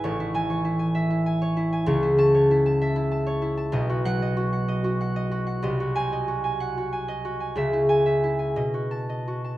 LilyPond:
<<
  \new Staff \with { instrumentName = "Harp" } { \time 6/8 \key a \lydian \tempo 4. = 63 << { r8 gis''2~ gis''8 | r8 a''2~ a''8 | r8 fis''2~ fis''8~ | fis''8 gis''2~ gis''8~ |
gis''8 gis''4 r8 a''4 | } \\ { <e' cis'' e'' gis''>16 e'8 cis''16 e'16 gis''16 e''16 e'16 gis''16 cis''16 e'16 gis''16 | cis''16 e'8 cis''16 e'16 a''16 e''16 e'16 a''16 cis''16 e'16 a''16 | dis''16 fis'8 dis''16 fis'16 fis''16 dis''16 fis'16 fis''16 dis''16 fis'16 fis''16 | dis''16 fis'8 dis''16 fis'16 gis''16 fis''16 fis'16 gis''16 dis''16 fis'16 gis''16 |
e''16 e'8 e''16 e'16 gis''16 dis''16 fis'8 dis''16 fis'16 a''16 | } >> }
  \new Staff \with { instrumentName = "Harp" } { \clef bass \time 6/8 \key a \lydian <a,, a, gis>8 e2~ e8 | <cis, cis>8 cis'2~ cis'8 | <b,, b,>8 fis2~ fis8 | <bis,, bis,>8 bis2~ bis8 |
<cis, cis>4. b,4. | }
>>